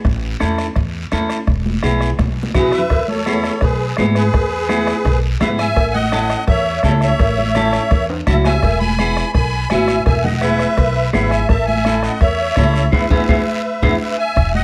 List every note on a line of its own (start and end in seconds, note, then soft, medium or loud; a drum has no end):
0.05 0.33 A1 medium
0.05 bombo low medium
0.05 bombo rim medium
0.05 long guiro medium
0.40 0.69 E2 medium
0.40 0.65 C#4 medium
0.40 0.65 E4 medium
0.40 0.66 A4 loud
0.40 bombo rim medium
0.40 high conga medium
0.40 short guiro medium
0.58 bombo rim medium
0.58 short guiro medium
0.76 1.05 E2 loud
0.76 bombo low medium
0.76 bombo rim medium
0.76 long guiro medium
1.12 1.26 E2 medium
1.12 1.37 C#4 medium
1.12 1.37 E4 medium
1.12 1.37 A4 medium
1.12 bombo rim medium
1.12 high conga medium
1.12 short guiro medium
1.30 bombo rim medium
1.30 short guiro medium
1.47 1.76 E1 medium
1.47 bombo low medium
1.47 bombo rim medium
1.47 long guiro medium
1.66 high conga medium
1.83 2.12 B1 medium
1.83 2.08 B3 medium
1.83 2.08 E4 medium
1.83 2.09 G#4 medium
1.83 bombo rim medium
1.83 high conga medium
1.83 short guiro medium
2.01 bombo rim medium
2.01 short guiro medium
2.19 2.47 B1 medium
2.19 bombo low medium
2.19 bombo rim medium
2.19 high conga medium
2.19 long guiro medium
2.43 high conga medium
2.54 2.69 B1 medium
2.54 2.80 B3 medium
2.54 2.80 E4 medium
2.54 2.80 F#4 medium
2.54 2.72 G#4 medium
2.54 2.72 B4 medium
2.54 bombo low medium
2.54 bombo rim medium
2.54 low conga medium
2.54 short guiro medium
2.72 3.06 B4 medium
2.72 3.09 E5 medium
2.72 bombo rim medium
2.72 short guiro medium
2.78 low conga medium
2.90 3.48 E2 medium
2.90 bombo low medium
2.90 bombo rim medium
2.90 cowbell loud
2.90 long guiro medium
3.08 3.59 A4 medium
3.08 3.64 C#5 medium
3.08 high conga medium
3.26 3.51 B3 medium
3.26 3.52 E4 soft
3.26 3.52 G#4 medium
3.26 bombo rim medium
3.26 high conga medium
3.26 short guiro medium
3.44 bombo rim medium
3.44 short guiro medium
3.61 3.90 B1 medium
3.61 3.96 G#4 medium
3.61 3.95 B4 medium
3.61 bombo low medium
3.61 bombo rim medium
3.61 cowbell medium
3.61 long guiro medium
3.97 4.27 G#2 medium
3.97 4.23 B3 medium
3.97 4.23 E4 soft
3.97 4.23 G#4 medium
3.97 4.06 G#4 medium
3.97 4.06 B4 medium
3.97 bombo rim medium
3.97 high conga medium
3.97 low timbale medium
3.97 short guiro medium
4.15 5.19 G#4 medium
4.15 5.19 B4 medium
4.15 bombo rim medium
4.15 short guiro medium
4.33 4.91 E2 medium
4.33 bombo low medium
4.33 bombo rim medium
4.33 cowbell loud
4.33 long guiro medium
4.69 4.94 B3 medium
4.69 4.94 E4 medium
4.69 4.94 G#4 medium
4.69 bombo rim medium
4.69 high conga medium
4.69 short guiro medium
4.87 bombo rim medium
4.87 short guiro medium
5.05 5.34 B1 medium
5.05 bombo low medium
5.05 bombo rim medium
5.05 cowbell medium
5.05 long guiro medium
5.40 5.69 G#2 medium
5.40 5.66 B3 medium
5.40 5.66 E4 medium
5.40 5.66 G#4 medium
5.40 5.50 B4 medium
5.40 5.48 E5 medium
5.40 bombo rim medium
5.40 high conga medium
5.40 low conga medium
5.40 low timbale medium
5.40 short guiro medium
5.58 5.92 E5 medium
5.58 5.95 G#5 loud
5.58 bombo rim medium
5.58 short guiro medium
5.76 6.34 A1 medium
5.76 bombo low medium
5.76 bombo rim medium
5.76 cowbell loud
5.76 long guiro medium
5.93 6.45 D#5 medium
5.93 6.44 F#5 loud
5.93 high conga medium
6.12 6.37 C#4 medium
6.12 6.38 E4 medium
6.12 6.38 A4 medium
6.12 bombo rim medium
6.12 high conga medium
6.12 short guiro medium
6.30 bombo rim medium
6.30 short guiro medium
6.47 6.76 E2 loud
6.47 6.82 C#5 medium
6.47 6.81 E5 loud
6.47 bombo low medium
6.47 bombo rim medium
6.47 cowbell medium
6.47 long guiro medium
6.83 7.12 C#2 medium
6.83 7.09 C#4 medium
6.83 7.09 E4 medium
6.83 7.09 A4 medium
6.83 6.93 C#5 medium
6.83 6.91 E5 medium
6.83 bombo low medium
6.83 bombo rim medium
6.83 high conga medium
6.83 low timbale medium
6.83 short guiro medium
7.01 8.06 C#5 medium
7.01 8.05 E5 loud
7.01 bombo rim medium
7.01 short guiro medium
7.19 7.77 A1 medium
7.19 bombo low medium
7.19 bombo rim medium
7.19 cowbell loud
7.19 long guiro medium
7.38 high conga medium
7.55 7.81 C#4 medium
7.55 7.81 E4 medium
7.55 7.81 A4 loud
7.55 bombo rim medium
7.55 high conga medium
7.55 short guiro medium
7.73 bombo rim medium
7.73 short guiro medium
7.91 8.20 E2 loud
7.91 bombo low medium
7.91 bombo rim medium
7.91 cowbell medium
7.91 long guiro medium
8.10 high timbale medium
8.27 8.56 C#2 medium
8.27 8.52 C#4 medium
8.27 8.53 E4 medium
8.27 8.53 F#4 medium
8.27 8.37 E5 medium
8.27 8.35 A5 medium
8.27 bombo low medium
8.27 bombo rim medium
8.27 high conga medium
8.27 low conga medium
8.27 short guiro medium
8.45 8.79 E5 medium
8.45 8.78 G#5 loud
8.45 bombo rim medium
8.45 low timbale medium
8.45 short guiro medium
8.63 9.20 E1 medium
8.63 bombo low medium
8.63 bombo rim medium
8.63 cowbell loud
8.63 long guiro medium
8.79 9.31 G#5 medium
8.79 9.32 B5 loud
8.79 high conga medium
8.99 9.24 B3 medium
8.99 9.24 E4 medium
8.99 9.25 G#4 medium
8.99 bombo rim medium
8.99 high conga medium
8.99 short guiro medium
9.17 bombo rim medium
9.17 short guiro medium
9.33 9.63 B1 medium
9.33 9.68 G#5 medium
9.33 9.71 B5 medium
9.33 bombo low medium
9.33 bombo rim medium
9.33 cowbell medium
9.33 long guiro medium
9.69 10.00 G#1 medium
9.69 9.96 B3 medium
9.69 9.96 E4 medium
9.69 9.96 F#4 medium
9.69 10.04 E5 medium
9.69 10.03 G#5 loud
9.69 bombo rim medium
9.69 high conga medium
9.69 low timbale medium
9.69 short guiro medium
9.88 bombo rim medium
9.88 short guiro medium
10.05 10.63 E1 medium
10.05 10.23 E5 medium
10.05 10.24 G#5 medium
10.05 bombo low medium
10.05 bombo rim medium
10.05 cowbell loud
10.05 long guiro medium
10.23 10.41 D#5 medium
10.23 10.42 F#5 medium
10.23 high conga medium
10.23 low conga medium
10.41 10.67 B3 medium
10.41 10.67 E4 medium
10.41 10.68 G#4 medium
10.41 11.10 B4 medium
10.41 11.09 E5 medium
10.41 bombo rim medium
10.41 high conga medium
10.41 short guiro medium
10.59 bombo rim medium
10.59 short guiro medium
10.77 11.06 B1 loud
10.77 bombo low medium
10.77 bombo rim medium
10.77 cowbell medium
10.77 long guiro medium
11.13 11.43 G#1 medium
11.13 11.39 B3 medium
11.13 11.39 E4 medium
11.13 11.39 G#4 medium
11.13 11.31 B4 medium
11.13 11.31 E5 medium
11.13 bombo rim medium
11.13 high conga medium
11.13 low conga medium
11.13 low timbale medium
11.13 short guiro medium
11.30 11.48 E5 medium
11.30 11.47 G#5 medium
11.30 bombo rim medium
11.30 short guiro medium
11.48 12.07 A1 medium
11.48 11.66 E5 medium
11.48 11.65 A5 medium
11.48 bombo low medium
11.48 bombo rim medium
11.48 cowbell loud
11.48 long guiro medium
11.66 12.01 E5 medium
11.66 12.04 G#5 loud
11.66 high conga medium
11.85 12.11 C#4 medium
11.85 12.11 E4 medium
11.85 12.11 A4 medium
11.85 bombo rim medium
11.85 high conga medium
11.85 short guiro medium
12.02 12.20 D#5 medium
12.02 12.19 F#5 medium
12.02 bombo rim medium
12.02 short guiro medium
12.20 12.50 E2 loud
12.20 12.89 C#5 medium
12.20 12.92 E5 loud
12.20 bombo low medium
12.20 bombo rim medium
12.20 cowbell medium
12.20 long guiro medium
12.56 12.86 C#2 medium
12.56 12.82 C#4 medium
12.56 12.83 E4 medium
12.56 12.83 A4 medium
12.56 bombo low medium
12.56 bombo rim medium
12.56 high conga medium
12.56 low timbale medium
12.56 short guiro medium
12.74 bombo rim medium
12.74 short guiro medium
12.92 13.06 E2 medium
12.92 13.04 B3 medium
12.92 13.04 E4 medium
12.92 13.04 G#4 medium
12.92 13.97 B4 medium
12.92 13.97 E5 medium
12.92 bombo low loud
12.92 high conga medium
12.92 high timbale loud
12.92 long guiro loud
13.10 13.24 E2 medium
13.10 13.22 B3 medium
13.10 13.23 E4 medium
13.10 13.23 G#4 medium
13.10 bombo low loud
13.10 high conga medium
13.10 high timbale loud
13.10 long guiro medium
13.28 13.42 E2 medium
13.28 13.41 B3 medium
13.28 13.41 E4 medium
13.28 13.41 G#4 loud
13.28 bombo low loud
13.28 high conga loud
13.28 high timbale medium
13.28 long guiro loud
13.82 13.96 E2 loud
13.82 13.94 B3 medium
13.82 13.94 E4 medium
13.82 13.94 G#4 medium
13.82 bombo low medium
13.82 high conga medium
13.82 high timbale loud
13.82 long guiro loud
14.01 14.18 B4 medium
14.01 14.17 E5 medium
14.18 14.52 E5 medium
14.18 14.52 G#5 loud
14.36 14.64 E1 medium
14.36 bombo low medium
14.36 bombo rim medium
14.36 long guiro medium
14.55 14.64 D#5 medium
14.55 14.64 F#5 loud
14.55 high conga medium